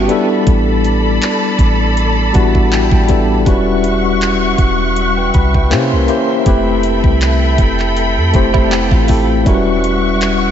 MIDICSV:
0, 0, Header, 1, 6, 480
1, 0, Start_track
1, 0, Tempo, 750000
1, 298, Time_signature, 4, 2, 24, 8
1, 6728, End_track
2, 0, Start_track
2, 0, Title_t, "String section"
2, 0, Program_c, 0, 48
2, 56, Note_on_c, 0, 69, 87
2, 56, Note_on_c, 0, 74, 78
2, 56, Note_on_c, 0, 81, 82
2, 56, Note_on_c, 0, 83, 93
2, 2195, Note_off_c, 0, 69, 0
2, 2195, Note_off_c, 0, 74, 0
2, 2195, Note_off_c, 0, 81, 0
2, 2195, Note_off_c, 0, 83, 0
2, 2216, Note_on_c, 0, 55, 90
2, 2216, Note_on_c, 0, 76, 84
2, 2216, Note_on_c, 0, 85, 91
2, 2217, Note_on_c, 0, 78, 83
2, 3642, Note_off_c, 0, 55, 0
2, 3643, Note_off_c, 0, 78, 0
2, 3643, Note_off_c, 0, 85, 0
2, 3656, Note_on_c, 0, 61, 67
2, 3657, Note_on_c, 0, 70, 76
2, 3657, Note_on_c, 0, 84, 87
2, 4132, Note_off_c, 0, 61, 0
2, 4132, Note_off_c, 0, 70, 0
2, 4133, Note_off_c, 0, 84, 0
2, 4134, Note_on_c, 0, 69, 89
2, 4135, Note_on_c, 0, 83, 92
2, 4136, Note_on_c, 0, 79, 78
2, 6032, Note_off_c, 0, 76, 0
2, 6037, Note_off_c, 0, 69, 0
2, 6037, Note_off_c, 0, 83, 0
2, 6038, Note_off_c, 0, 79, 0
2, 6054, Note_on_c, 0, 55, 84
2, 6054, Note_on_c, 0, 76, 76
2, 6054, Note_on_c, 0, 85, 94
2, 6055, Note_on_c, 0, 78, 77
2, 6728, Note_off_c, 0, 55, 0
2, 6728, Note_off_c, 0, 76, 0
2, 6728, Note_off_c, 0, 78, 0
2, 6728, Note_off_c, 0, 85, 0
2, 6728, End_track
3, 0, Start_track
3, 0, Title_t, "Tine electric piano"
3, 0, Program_c, 1, 4
3, 0, Control_c, 1, 64, 127
3, 0, Note_on_c, 1, 55, 83
3, 0, Note_on_c, 1, 59, 77
3, 0, Note_on_c, 1, 61, 74
3, 0, Note_on_c, 1, 64, 77
3, 0, Note_on_c, 1, 66, 98
3, 53, Note_off_c, 1, 55, 0
3, 53, Note_on_c, 1, 55, 90
3, 57, Note_off_c, 1, 59, 0
3, 57, Note_on_c, 1, 59, 83
3, 62, Note_on_c, 1, 62, 85
3, 65, Control_c, 1, 64, 0
3, 66, Note_off_c, 1, 64, 0
3, 68, Note_off_c, 1, 66, 0
3, 68, Note_on_c, 1, 64, 81
3, 70, Note_off_c, 1, 61, 0
3, 71, Note_on_c, 1, 69, 100
3, 169, Control_c, 1, 64, 127
3, 848, Note_off_c, 1, 55, 0
3, 850, Note_off_c, 1, 59, 0
3, 852, Note_off_c, 1, 62, 0
3, 855, Note_off_c, 1, 64, 0
3, 857, Note_off_c, 1, 69, 0
3, 1490, Note_on_c, 1, 55, 85
3, 1496, Note_on_c, 1, 59, 80
3, 1501, Note_on_c, 1, 62, 76
3, 1501, Note_on_c, 1, 78, 73
3, 1506, Note_on_c, 1, 64, 78
3, 1510, Note_on_c, 1, 66, 98
3, 1620, Note_off_c, 1, 78, 0
3, 1631, Note_on_c, 1, 76, 65
3, 1732, Note_off_c, 1, 76, 0
3, 1742, Note_on_c, 1, 79, 78
3, 1860, Note_off_c, 1, 79, 0
3, 1873, Note_on_c, 1, 79, 74
3, 1894, Note_off_c, 1, 55, 0
3, 1897, Note_off_c, 1, 59, 0
3, 1900, Note_off_c, 1, 62, 0
3, 1902, Note_off_c, 1, 64, 0
3, 1905, Note_off_c, 1, 66, 0
3, 1972, Note_on_c, 1, 55, 81
3, 1977, Note_on_c, 1, 59, 74
3, 1982, Note_on_c, 1, 62, 73
3, 1986, Note_on_c, 1, 64, 74
3, 1991, Note_on_c, 1, 69, 90
3, 2175, Note_off_c, 1, 55, 0
3, 2178, Note_off_c, 1, 59, 0
3, 2180, Note_off_c, 1, 62, 0
3, 2182, Note_off_c, 1, 64, 0
3, 2185, Note_off_c, 1, 69, 0
3, 2196, Note_off_c, 1, 79, 0
3, 2213, Note_on_c, 1, 55, 91
3, 2217, Note_on_c, 1, 61, 80
3, 2222, Note_on_c, 1, 64, 78
3, 2226, Control_c, 1, 64, 0
3, 2227, Note_on_c, 1, 66, 81
3, 2231, Note_on_c, 1, 71, 96
3, 2352, Control_c, 1, 64, 127
3, 3008, Note_off_c, 1, 55, 0
3, 3010, Note_off_c, 1, 61, 0
3, 3012, Note_off_c, 1, 64, 0
3, 3015, Note_off_c, 1, 66, 0
3, 3017, Note_off_c, 1, 71, 0
3, 3312, Note_on_c, 1, 79, 68
3, 3316, Note_on_c, 1, 71, 55
3, 3415, Note_off_c, 1, 79, 0
3, 3417, Note_off_c, 1, 71, 0
3, 3420, Note_on_c, 1, 83, 71
3, 3542, Note_off_c, 1, 83, 0
3, 3550, Note_on_c, 1, 79, 65
3, 3553, Note_on_c, 1, 71, 52
3, 3649, Note_on_c, 1, 58, 97
3, 3654, Note_on_c, 1, 61, 86
3, 3659, Note_on_c, 1, 64, 89
3, 3663, Note_on_c, 1, 67, 86
3, 3667, Control_c, 1, 64, 0
3, 3668, Note_on_c, 1, 72, 100
3, 3777, Note_off_c, 1, 79, 0
3, 3778, Note_off_c, 1, 71, 0
3, 3793, Control_c, 1, 64, 127
3, 3854, Note_off_c, 1, 58, 0
3, 3856, Note_off_c, 1, 61, 0
3, 3858, Note_off_c, 1, 64, 0
3, 3861, Note_off_c, 1, 67, 0
3, 3863, Note_off_c, 1, 72, 0
3, 3888, Note_on_c, 1, 58, 77
3, 3893, Note_on_c, 1, 61, 73
3, 3897, Note_on_c, 1, 64, 75
3, 3901, Note_on_c, 1, 67, 76
3, 3905, Note_on_c, 1, 72, 85
3, 4093, Note_off_c, 1, 58, 0
3, 4095, Note_off_c, 1, 61, 0
3, 4097, Note_off_c, 1, 64, 0
3, 4099, Note_off_c, 1, 67, 0
3, 4102, Note_off_c, 1, 72, 0
3, 4129, Note_on_c, 1, 57, 86
3, 4134, Note_on_c, 1, 60, 81
3, 4138, Note_on_c, 1, 64, 82
3, 4143, Note_on_c, 1, 67, 78
3, 4147, Control_c, 1, 64, 0
3, 4150, Note_on_c, 1, 71, 91
3, 4260, Control_c, 1, 64, 127
3, 4925, Note_off_c, 1, 57, 0
3, 4928, Note_off_c, 1, 60, 0
3, 4930, Note_off_c, 1, 64, 0
3, 4933, Note_off_c, 1, 67, 0
3, 4936, Note_off_c, 1, 71, 0
3, 5330, Note_on_c, 1, 57, 84
3, 5335, Note_on_c, 1, 60, 76
3, 5340, Note_on_c, 1, 64, 80
3, 5343, Note_on_c, 1, 67, 78
3, 5350, Note_on_c, 1, 72, 95
3, 5734, Note_off_c, 1, 57, 0
3, 5737, Note_off_c, 1, 60, 0
3, 5739, Note_off_c, 1, 64, 0
3, 5741, Note_off_c, 1, 67, 0
3, 5744, Note_off_c, 1, 72, 0
3, 5810, Note_on_c, 1, 57, 78
3, 5814, Note_on_c, 1, 60, 70
3, 5819, Note_on_c, 1, 64, 73
3, 5824, Note_on_c, 1, 67, 70
3, 5829, Note_on_c, 1, 69, 89
3, 6014, Note_off_c, 1, 57, 0
3, 6016, Note_off_c, 1, 60, 0
3, 6019, Note_off_c, 1, 64, 0
3, 6021, Note_off_c, 1, 67, 0
3, 6024, Note_off_c, 1, 69, 0
3, 6047, Note_on_c, 1, 55, 89
3, 6053, Note_on_c, 1, 61, 82
3, 6057, Note_on_c, 1, 64, 80
3, 6062, Note_on_c, 1, 66, 84
3, 6067, Note_on_c, 1, 70, 78
3, 6068, Control_c, 1, 64, 0
3, 6107, Note_off_c, 1, 70, 0
3, 6109, Note_on_c, 1, 71, 94
3, 6169, Control_c, 1, 64, 127
3, 6728, Note_off_c, 1, 55, 0
3, 6728, Note_off_c, 1, 61, 0
3, 6728, Note_off_c, 1, 64, 0
3, 6728, Note_off_c, 1, 66, 0
3, 6728, Note_off_c, 1, 71, 0
3, 6728, End_track
4, 0, Start_track
4, 0, Title_t, "Clean electric guitar"
4, 0, Program_c, 2, 27
4, 0, Note_on_c, 2, 59, 64
4, 0, Note_on_c, 2, 67, 74
4, 177, Note_off_c, 2, 67, 0
4, 179, Note_off_c, 2, 59, 0
4, 5464, Note_on_c, 2, 64, 75
4, 5468, Note_on_c, 2, 55, 65
4, 5571, Note_off_c, 2, 64, 0
4, 5573, Note_off_c, 2, 55, 0
4, 5573, Note_on_c, 2, 67, 79
4, 5577, Note_on_c, 2, 59, 71
4, 5698, Note_off_c, 2, 59, 0
4, 5699, Note_off_c, 2, 67, 0
4, 5700, Note_on_c, 2, 65, 74
4, 5704, Note_on_c, 2, 57, 64
4, 6037, Note_off_c, 2, 65, 0
4, 6039, Note_off_c, 2, 57, 0
4, 6728, End_track
5, 0, Start_track
5, 0, Title_t, "808-style bass"
5, 0, Program_c, 3, 38
5, 300, Note_on_c, 3, 33, 109
5, 760, Note_off_c, 3, 33, 0
5, 1016, Note_on_c, 3, 33, 104
5, 1478, Note_off_c, 3, 33, 0
5, 1504, Note_on_c, 3, 33, 106
5, 1856, Note_off_c, 3, 33, 0
5, 1867, Note_on_c, 3, 33, 104
5, 2204, Note_off_c, 3, 33, 0
5, 2218, Note_on_c, 3, 28, 110
5, 2912, Note_off_c, 3, 28, 0
5, 2934, Note_on_c, 3, 28, 106
5, 3397, Note_off_c, 3, 28, 0
5, 3423, Note_on_c, 3, 36, 109
5, 3661, Note_on_c, 3, 48, 96
5, 3670, Note_off_c, 3, 36, 0
5, 3791, Note_on_c, 3, 36, 100
5, 3800, Note_off_c, 3, 48, 0
5, 3894, Note_off_c, 3, 36, 0
5, 4136, Note_on_c, 3, 29, 112
5, 4492, Note_off_c, 3, 29, 0
5, 4506, Note_on_c, 3, 36, 100
5, 4843, Note_off_c, 3, 36, 0
5, 4854, Note_on_c, 3, 29, 106
5, 5226, Note_on_c, 3, 41, 100
5, 5236, Note_off_c, 3, 29, 0
5, 5332, Note_off_c, 3, 41, 0
5, 5341, Note_on_c, 3, 29, 105
5, 5694, Note_off_c, 3, 29, 0
5, 5706, Note_on_c, 3, 33, 109
5, 6043, Note_off_c, 3, 33, 0
5, 6057, Note_on_c, 3, 28, 106
5, 6728, Note_off_c, 3, 28, 0
5, 6728, End_track
6, 0, Start_track
6, 0, Title_t, "Drums"
6, 58, Note_on_c, 9, 42, 68
6, 122, Note_off_c, 9, 42, 0
6, 299, Note_on_c, 9, 36, 117
6, 301, Note_on_c, 9, 42, 78
6, 363, Note_off_c, 9, 36, 0
6, 365, Note_off_c, 9, 42, 0
6, 541, Note_on_c, 9, 42, 73
6, 605, Note_off_c, 9, 42, 0
6, 780, Note_on_c, 9, 42, 62
6, 784, Note_on_c, 9, 39, 109
6, 844, Note_off_c, 9, 42, 0
6, 848, Note_off_c, 9, 39, 0
6, 1016, Note_on_c, 9, 36, 104
6, 1019, Note_on_c, 9, 42, 65
6, 1080, Note_off_c, 9, 36, 0
6, 1083, Note_off_c, 9, 42, 0
6, 1261, Note_on_c, 9, 42, 72
6, 1325, Note_off_c, 9, 42, 0
6, 1499, Note_on_c, 9, 42, 61
6, 1503, Note_on_c, 9, 36, 98
6, 1563, Note_off_c, 9, 42, 0
6, 1567, Note_off_c, 9, 36, 0
6, 1631, Note_on_c, 9, 36, 102
6, 1695, Note_off_c, 9, 36, 0
6, 1741, Note_on_c, 9, 42, 58
6, 1744, Note_on_c, 9, 39, 119
6, 1805, Note_off_c, 9, 42, 0
6, 1808, Note_off_c, 9, 39, 0
6, 1865, Note_on_c, 9, 36, 93
6, 1929, Note_off_c, 9, 36, 0
6, 1974, Note_on_c, 9, 42, 73
6, 1981, Note_on_c, 9, 36, 101
6, 2038, Note_off_c, 9, 42, 0
6, 2045, Note_off_c, 9, 36, 0
6, 2217, Note_on_c, 9, 36, 116
6, 2218, Note_on_c, 9, 42, 80
6, 2281, Note_off_c, 9, 36, 0
6, 2282, Note_off_c, 9, 42, 0
6, 2457, Note_on_c, 9, 42, 77
6, 2521, Note_off_c, 9, 42, 0
6, 2698, Note_on_c, 9, 42, 66
6, 2701, Note_on_c, 9, 39, 105
6, 2762, Note_off_c, 9, 42, 0
6, 2765, Note_off_c, 9, 39, 0
6, 2933, Note_on_c, 9, 36, 97
6, 2934, Note_on_c, 9, 42, 73
6, 2997, Note_off_c, 9, 36, 0
6, 2998, Note_off_c, 9, 42, 0
6, 3177, Note_on_c, 9, 42, 72
6, 3241, Note_off_c, 9, 42, 0
6, 3417, Note_on_c, 9, 42, 59
6, 3421, Note_on_c, 9, 36, 91
6, 3481, Note_off_c, 9, 42, 0
6, 3485, Note_off_c, 9, 36, 0
6, 3548, Note_on_c, 9, 36, 97
6, 3612, Note_off_c, 9, 36, 0
6, 3657, Note_on_c, 9, 42, 61
6, 3661, Note_on_c, 9, 39, 120
6, 3721, Note_off_c, 9, 42, 0
6, 3725, Note_off_c, 9, 39, 0
6, 3892, Note_on_c, 9, 42, 68
6, 3956, Note_off_c, 9, 42, 0
6, 4134, Note_on_c, 9, 42, 77
6, 4135, Note_on_c, 9, 36, 113
6, 4198, Note_off_c, 9, 42, 0
6, 4199, Note_off_c, 9, 36, 0
6, 4373, Note_on_c, 9, 42, 80
6, 4437, Note_off_c, 9, 42, 0
6, 4505, Note_on_c, 9, 36, 95
6, 4569, Note_off_c, 9, 36, 0
6, 4616, Note_on_c, 9, 42, 65
6, 4620, Note_on_c, 9, 39, 106
6, 4680, Note_off_c, 9, 42, 0
6, 4684, Note_off_c, 9, 39, 0
6, 4853, Note_on_c, 9, 36, 102
6, 4853, Note_on_c, 9, 42, 69
6, 4917, Note_off_c, 9, 36, 0
6, 4917, Note_off_c, 9, 42, 0
6, 4990, Note_on_c, 9, 39, 64
6, 5054, Note_off_c, 9, 39, 0
6, 5098, Note_on_c, 9, 42, 73
6, 5162, Note_off_c, 9, 42, 0
6, 5335, Note_on_c, 9, 42, 61
6, 5341, Note_on_c, 9, 36, 96
6, 5399, Note_off_c, 9, 42, 0
6, 5405, Note_off_c, 9, 36, 0
6, 5468, Note_on_c, 9, 36, 101
6, 5532, Note_off_c, 9, 36, 0
6, 5578, Note_on_c, 9, 42, 59
6, 5581, Note_on_c, 9, 39, 117
6, 5642, Note_off_c, 9, 42, 0
6, 5645, Note_off_c, 9, 39, 0
6, 5704, Note_on_c, 9, 36, 89
6, 5768, Note_off_c, 9, 36, 0
6, 5812, Note_on_c, 9, 46, 72
6, 5819, Note_on_c, 9, 36, 104
6, 5876, Note_off_c, 9, 46, 0
6, 5883, Note_off_c, 9, 36, 0
6, 6055, Note_on_c, 9, 42, 76
6, 6056, Note_on_c, 9, 36, 114
6, 6119, Note_off_c, 9, 42, 0
6, 6120, Note_off_c, 9, 36, 0
6, 6297, Note_on_c, 9, 42, 80
6, 6361, Note_off_c, 9, 42, 0
6, 6536, Note_on_c, 9, 42, 70
6, 6540, Note_on_c, 9, 39, 107
6, 6600, Note_off_c, 9, 42, 0
6, 6604, Note_off_c, 9, 39, 0
6, 6728, End_track
0, 0, End_of_file